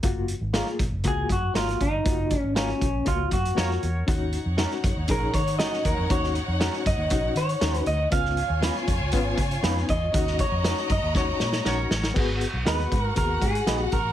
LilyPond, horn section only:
\new Staff \with { instrumentName = "Horn section" } { \time 4/4 \key ees \minor \tempo 4 = 119 r1 | r2 <ges' bes' des''>16 r8. <ges' bes' des''>4 | r1 | r1 |
r1 | r2 <ges' bes' des''>16 r8. <ges' bes' des''>4 | r1 | }